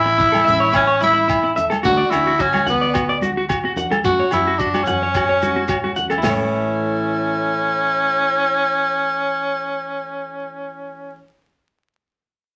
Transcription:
0.00 0.44 A1 medium
0.00 0.10 A3 soft
0.00 0.71 E4 loud
0.06 muted clean electric guitar stroke medium
0.18 0.27 E4 medium
0.18 kick medium
0.18 shekere medium
0.32 0.40 A4 medium
0.32 cross-stick medium
0.32 high conga medium
0.32 low agogo medium
0.45 1.53 A1 medium
0.45 0.65 A3 soft
0.45 0.64 C#4 soft
0.45 0.64 A4 soft
0.45 0.54 E5 medium
0.45 closed hi-hat soft
0.45 high conga medium
0.45 low conga medium
0.45 shekere medium
0.60 0.68 C#5 medium
0.73 1.00 C#4 medium
0.73 0.81 E4 medium
0.73 kick medium
0.73 cross-stick medium
0.73 low agogo medium
0.73 shekere medium
0.87 0.95 C#5 medium
1.00 1.20 A3 soft
1.00 1.19 C#4 soft
1.00 1.09 E4 medium
1.00 1.54 E4 medium
1.00 closed hi-hat soft
1.00 high conga medium
1.00 shekere medium
1.14 1.22 E4 medium
1.28 1.37 E4 medium
1.28 kick medium
1.28 cross-stick medium
1.28 low agogo medium
1.28 shekere medium
1.44 1.51 E4 medium
1.56 1.75 A3 soft
1.56 1.74 A4 medium
1.56 1.64 E5 medium
1.56 closed hi-hat soft
1.56 low conga medium
1.56 shekere medium
1.70 1.77 A4 medium
1.70 cross-stick medium
1.70 high conga medium
1.70 low agogo medium
1.83 1.99 D2 medium
1.83 2.01 A3 medium
1.83 2.02 D4 medium
1.83 1.91 F#4 medium
1.83 2.12 F#4 medium
1.83 2.02 F#4 medium
1.83 kick medium
1.83 low conga medium
1.83 shekere medium
1.97 2.05 D5 medium
2.10 2.64 D2 medium
2.10 2.30 D4 soft
2.10 2.43 E4 medium
2.10 2.19 F#4 medium
2.10 2.29 F#4 soft
2.10 cross-stick medium
2.10 closed hi-hat soft
2.10 low conga medium
2.10 low agogo medium
2.10 shekere medium
2.27 2.34 F#4 medium
2.39 2.68 C#4 medium
2.39 2.47 F#4 medium
2.39 kick medium
2.39 shekere medium
2.53 2.61 F#4 medium
2.53 cross-stick medium
2.53 high conga medium
2.53 low agogo medium
2.67 3.73 D2 medium
2.67 3.19 B3 medium
2.67 2.84 F#4 soft
2.67 2.75 F#5 medium
2.67 muted steel-string acoustic guitar stroke soft
2.67 closed hi-hat soft
2.67 low conga medium
2.67 shekere medium
2.81 2.89 D5 medium
2.94 3.03 F#4 medium
2.94 kick medium
2.94 cross-stick medium
2.94 low agogo medium
2.94 shekere medium
3.09 3.16 D5 medium
3.21 3.40 D4 soft
3.21 3.30 F#4 medium
3.21 3.39 F#4 soft
3.21 closed hi-hat soft
3.21 high conga medium
3.21 shekere medium
3.37 3.44 F#4 medium
3.49 3.58 F#4 medium
3.49 kick medium
3.49 cross-stick medium
3.49 low agogo medium
3.49 shekere medium
3.65 3.72 F#4 medium
3.76 3.95 D4 soft
3.76 3.94 F#4 medium
3.76 3.85 F#5 medium
3.76 closed hi-hat soft
3.76 low conga medium
3.76 shekere medium
3.91 3.99 A4 medium
3.91 cross-stick medium
3.91 high conga medium
3.91 low agogo medium
4.04 4.18 F#2 medium
4.04 4.22 A3 medium
4.04 4.22 C#4 medium
4.04 4.13 F#4 medium
4.04 4.30 F#4 medium
4.04 4.23 F#4 medium
4.04 kick medium
4.04 low conga medium
4.04 shekere medium
4.20 4.27 C#5 medium
4.31 4.84 F#2 medium
4.31 4.60 E4 medium
4.31 4.40 F#4 medium
4.31 4.49 F#4 soft
4.31 cross-stick medium
4.31 closed hi-hat soft
4.31 low conga medium
4.31 low agogo medium
4.31 shekere medium
4.36 4.51 C#4 soft
4.47 4.54 F#4 medium
4.59 4.85 D4 medium
4.59 4.68 F#4 medium
4.59 kick medium
4.59 shekere medium
4.74 4.82 F#4 medium
4.74 cross-stick medium
4.74 high conga medium
4.74 low agogo medium
4.84 5.95 C#4 medium
4.84 4.95 F#5 medium
4.84 closed hi-hat soft
4.84 low conga medium
4.84 shekere medium
4.88 5.94 F#2 medium
4.88 5.06 C#4 soft
4.88 5.05 F#4 soft
5.03 5.10 C#5 medium
5.14 5.24 F#4 medium
5.14 kick medium
5.14 cross-stick medium
5.14 low agogo medium
5.14 shekere medium
5.29 5.36 C#5 medium
5.42 5.61 C#4 soft
5.42 5.50 F#4 medium
5.42 5.60 F#4 soft
5.42 closed hi-hat soft
5.42 high conga medium
5.42 shekere medium
5.56 5.63 F#4 medium
5.68 5.77 F#4 medium
5.68 kick medium
5.68 cross-stick medium
5.68 low agogo medium
5.68 shekere medium
5.84 5.91 F#4 medium
5.84 high conga soft
5.96 6.16 C#4 soft
5.96 6.14 F#4 medium
5.96 6.05 F#5 medium
5.96 closed hi-hat soft
5.96 low conga medium
5.96 shekere medium
6.10 6.18 A4 medium
6.10 cross-stick medium
6.10 low conga medium
6.10 low agogo medium
6.18 11.10 E4 medium
6.22 11.18 A1 medium
6.22 11.19 E3 medium
6.22 11.18 C#4 medium
6.22 11.16 A4 medium
6.22 snare medium
6.22 floor tom medium
6.22 open hi-hat medium
6.22 high conga medium
6.22 low agogo medium
6.22 shekere medium
6.27 11.23 A3 medium
6.27 11.26 C#4 medium
6.27 11.22 C#5 medium

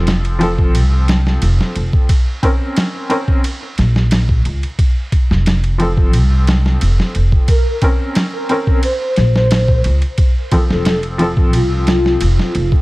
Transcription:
0.00 0.76 F1 medium
0.00 0.37 F3 medium
0.00 0.37 C4 medium
0.00 0.37 A4 medium
0.07 snare loud
0.07 ride medium
0.25 ride soft
0.39 2.06 F3 medium
0.39 2.07 C4 medium
0.39 ride medium
0.43 2.08 A4 medium
0.58 kick medium
0.75 1.39 C2 medium
0.75 ride medium
1.08 snare loud
1.08 ride medium
1.27 snare soft
1.42 1.58 F1 medium
1.42 ride medium
1.61 snare soft
1.76 1.91 F1 medium
1.76 ride medium
1.93 kick medium
2.09 kick loud
2.09 ride medium
2.43 3.06 C4 medium
2.43 3.07 C#4 medium
2.43 3.07 A#4 medium
2.43 kick medium
2.43 ride medium
2.76 snare loud
2.76 ride medium
3.10 3.38 C4 loud
3.10 3.38 C#4 medium
3.10 3.39 A#4 loud
3.10 ride medium
3.28 kick medium
3.44 ride medium
3.78 4.42 A#1 medium
3.78 snare soft
3.78 ride medium
3.96 snare medium
4.11 snare loud
4.11 ride medium
4.29 kick medium
4.45 4.61 C#2 medium
4.45 ride medium
4.63 ride soft
4.79 kick loud
4.79 ride medium
5.12 kick medium
5.12 ride medium
5.31 6.15 F1 medium
5.31 snare soft
5.46 snare loud
5.46 ride medium
5.64 ride soft
5.78 7.46 F3 medium
5.78 7.47 C4 medium
5.78 7.48 A4 medium
5.78 ride medium
5.97 kick medium
6.13 6.78 C2 medium
6.13 ride medium
6.47 snare loud
6.47 ride medium
6.66 snare soft
6.81 6.97 F1 medium
6.81 ride medium
7.00 snare soft
7.15 7.31 F1 medium
7.15 ride medium
7.32 kick medium
7.48 7.94 A#4 medium
7.48 kick loud
7.48 ride medium
7.82 8.46 C4 medium
7.82 8.46 C#4 medium
7.82 8.47 A#4 medium
7.82 kick medium
7.82 ride medium
8.15 snare loud
8.15 ride medium
8.33 8.78 A#4 loud
8.49 8.78 C4 medium
8.49 8.78 C#4 medium
8.49 8.79 A#4 loud
8.49 ride medium
8.67 kick medium
8.83 9.30 C5 loud
8.83 ride medium
9.16 9.82 A#1 medium
9.16 snare soft
9.16 ride medium
9.36 9.80 C5 loud
9.36 snare medium
9.51 snare loud
9.51 ride medium
9.68 kick medium
9.84 10.01 C#2 medium
9.84 ride medium
10.02 ride soft
10.18 kick loud
10.18 ride medium
10.52 11.15 F3 medium
10.52 11.16 C4 medium
10.52 11.16 A4 medium
10.52 kick medium
10.52 ride medium
10.70 11.54 F1 medium
10.70 11.00 A4 medium
10.70 snare soft
10.85 snare loud
10.85 ride medium
11.03 ride soft
11.18 12.82 F3 medium
11.18 12.82 C4 medium
11.18 12.82 A4 loud
11.18 ride medium
11.37 kick medium
11.53 12.18 C2 medium
11.53 12.76 F4 loud
11.53 ride medium
11.87 snare loud
11.87 ride medium
12.06 snare soft
12.21 12.37 F1 medium
12.21 ride medium
12.39 snare soft
12.55 12.70 F1 medium
12.55 ride medium
12.72 kick medium

